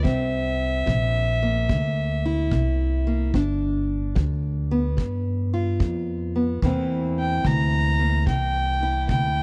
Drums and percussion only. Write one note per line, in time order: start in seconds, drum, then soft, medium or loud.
0.05 kick medium
0.87 kick medium
1.69 kick medium
2.51 kick medium
3.34 kick medium
4.16 kick medium
4.98 kick medium
5.80 kick medium
6.62 kick medium
7.45 kick medium
8.27 kick medium
9.09 kick medium